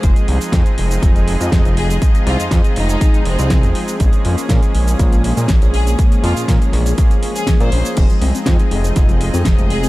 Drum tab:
CC |----------------|----------------|----------------|----------------|
HH |xxoxxxoxxxoxxxox|xxoxxxoxxxoxxxox|xxoxxxoxxxoxxxox|xxoxxxoxxxoxxxox|
SH |xx-xxx-xxx-xxx-x|xx-xxx-xxx-xxx-x|xx-xxx-xxx-xxx-x|xx-xxx-xxx-xxx-x|
SD |----o-------o---|----o-------o---|----o-------o---|----o-o-----o---|
BD |o---o---o---o---|o---o---o---o---|o---o---o---o---|o---o---o---o---|

CC |x---------------|
HH |xxoxxxoxxxoxxxox|
SH |xx-xxx-xxx-xxx-x|
SD |----o-------o---|
BD |o---o---o---o---|